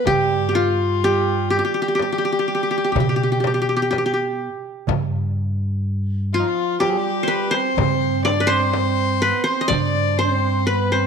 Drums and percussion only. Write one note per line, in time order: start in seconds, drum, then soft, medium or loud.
0.06 darbuka dum medium
0.06 frame drum medium
1.98 darbuka tek medium
1.98 frame drum medium
2.48 darbuka ka soft
2.95 darbuka dum medium
2.95 frame drum medium
3.21 darbuka ka soft
3.44 darbuka tek medium
3.44 frame drum medium
3.93 darbuka tek medium
3.93 frame drum medium
4.65 darbuka ka soft
4.87 darbuka dum medium
4.87 frame drum medium
5.84 darbuka ka soft
6.33 darbuka ka soft
6.81 darbuka tek medium
6.81 frame drum medium
7.30 darbuka ka soft
7.78 frame drum medium
7.78 darbuka dum loud
8.02 darbuka ka soft
8.26 darbuka tek medium
8.26 frame drum medium
8.73 darbuka tek medium
8.73 frame drum medium
9.47 darbuka ka soft
9.70 frame drum medium
9.70 darbuka dum medium